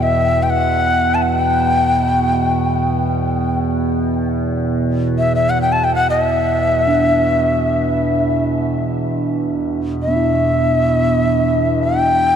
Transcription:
Already playing: E2 B2 B3
0.03 E5
0.43 G5
0.50 F#5
1.15 A5
1.22 F#5
1.35 G5
5.18 E5
5.35 E5
5.50 F#5
5.62 G5
5.72 A5
5.84 G5
5.95 F#5
6.10 D#5
6.23 E5
6.87 D4
9.22 E2 B2
10.03 E5
10.08 B3 D4
10.16 E4
11.83 G5

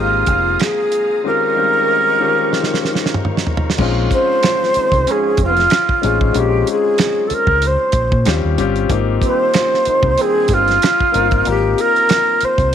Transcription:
Already playing: G#1 G#3 A#3 C4 D#4 F4 G4 G#4 F5 A#5 D#6
0.26 F1, kick, closed hi-hat
0.59 G#4, finger snap, snare, closed hi-hat
0.92 closed hi-hat
1.24 D#3 G#3 C4 C#4 D#4 F4 G4 A#4 C#6
1.55 D#3 G3 C4 C#4 F4 G4
1.62 G#3
2.19 D#3 G#3 C4 C#4 F4 G4
2.53 snare
2.64 snare
2.74 snare
2.85 snare
2.95 snare
3.06 snare
3.14 mid tom
3.25 mid tom
3.37 snare
3.47 floor tom
3.57 floor tom
3.70 snare
3.78 A#1 G#3 C4 C#4 D#4 F4, kick, crash
4.11 G#2 F3 C#4 C5, kick, closed hi-hat
4.43 C#3 C4 F4, finger snap, snare, closed hi-hat
4.63 snare
4.74 D#3 C4 D#4, muted fingered electric bass stroke, closed hi-hat
4.92 C2, kick, closed hi-hat
5.07 G#2 F3 C#4, closed hi-hat
5.11 G#4
5.37 F1, kick, closed hi-hat
5.44 F4
5.57 snare, closed hi-hat
5.70 finger snap, snare, closed hi-hat
5.89 kick
6.02 A1 G#3 C4 C#4 D#4 G#4, closed hi-hat
6.21 kick
6.33 A#1 G#3 C4 C#4 D#4 F4, closed hi-hat
6.38 G4
6.67 closed hi-hat
6.71 G#4
6.98 finger snap, snare, closed hi-hat
7.27 A4, muted fingered electric bass stroke, closed hi-hat
7.34 A#4
7.47 C#2, kick
7.62 closed hi-hat
7.67 C5
7.92 A#1, kick, closed hi-hat
8.12 A#2, kick
8.25 D#2 G3 C4 C#4 F4 G4, finger snap, snare, closed hi-hat
8.44 D#2
8.57 G1 G3 C4 C#4 F4 G4, closed hi-hat
8.76 closed hi-hat
8.89 G#1 A#3 C4 D#4 F4 G4, kick, closed hi-hat
9.21 G2 D#3 C4, kick, closed hi-hat
9.26 C5
9.54 F3 C#4 F4, finger snap, snare, closed hi-hat
9.74 snare
9.85 C3 A#3 D#4, muted fingered electric bass stroke, closed hi-hat
10.03 C2, kick
10.18 G2 D#3 C4 G#4, closed hi-hat
10.48 G1, kick, closed hi-hat
10.53 F4
10.68 snare, closed hi-hat
10.82 finger snap, snare, closed hi-hat
11.00 kick
11.12 G1 A#3 C4 D#4 F4 A#4, closed hi-hat
11.31 kick, closed hi-hat
11.45 G#1 A#3 C4 D#4 F4 A#4, closed hi-hat
11.50 G4
11.78 A#4, closed hi-hat
11.96 closed hi-hat
12.09 finger snap, snare, closed hi-hat
12.41 C5, muted fingered electric bass stroke, closed hi-hat
12.58 C2, kick, closed hi-hat

